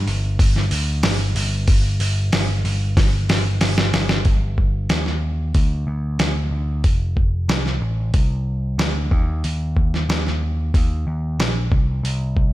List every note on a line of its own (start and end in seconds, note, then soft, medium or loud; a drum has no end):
0.06 0.38 G1 loud
0.06 open hi-hat medium
0.39 0.70 G1 medium
0.39 kick loud
0.39 open hi-hat medium
0.56 snare soft
0.71 1.02 D2 loud
0.71 open hi-hat medium
1.03 1.34 G1 medium
1.03 snare loud
1.03 open hi-hat medium
1.35 1.66 G1 medium
1.35 open hi-hat medium
1.68 1.99 G1 medium
1.68 kick loud
1.68 open hi-hat medium
2.00 2.31 G1 loud
2.00 open hi-hat medium
2.32 2.63 G1 medium
2.32 snare loud
2.32 open hi-hat medium
2.64 2.95 G1 medium
2.64 open hi-hat medium
2.97 3.28 G1 medium
2.97 kick loud
2.97 snare medium
2.97 open hi-hat medium
3.29 3.60 G1 medium
3.29 snare medium
3.29 open hi-hat medium
3.61 3.92 G1 medium
3.61 snare medium
3.61 open hi-hat medium
3.78 snare medium
3.93 4.24 G1 medium
3.93 snare loud
3.93 open hi-hat medium
4.09 snare medium
4.25 4.87 G1 medium
4.25 kick loud
4.25 open hi-hat soft
4.58 kick medium
4.89 5.52 D#2 medium
4.89 snare loud
4.89 open hi-hat soft
5.06 snare soft
5.55 5.86 D2 medium
5.55 kick loud
5.55 open hi-hat medium
5.87 6.18 D2 medium
6.19 6.51 D2 medium
6.19 snare loud
6.19 open hi-hat medium
6.51 6.82 D2 medium
6.84 7.46 F1 medium
6.84 kick medium
6.84 open hi-hat medium
7.17 kick medium
7.48 7.80 C2 medium
7.48 snare loud
7.48 open hi-hat medium
7.66 snare soft
7.81 8.12 A1 medium
8.14 8.76 C2 medium
8.14 kick loud
8.14 open hi-hat medium
8.78 9.11 D2 medium
8.78 snare loud
8.78 open hi-hat medium
9.11 9.42 D#2 medium
9.11 kick loud
9.44 10.06 D#2 medium
9.44 open hi-hat soft
9.77 kick medium
9.94 snare soft
10.09 10.71 D#2 medium
10.09 snare loud
10.09 open hi-hat soft
10.27 snare soft
10.74 11.05 D#2 medium
10.74 kick loud
10.74 open hi-hat medium
11.07 11.37 D#2 medium
11.39 11.70 A#1 medium
11.39 snare loud
11.39 open hi-hat medium
11.72 12.03 C2 medium
11.72 kick medium
12.03 12.53 C2 medium
12.03 open hi-hat medium
12.37 kick medium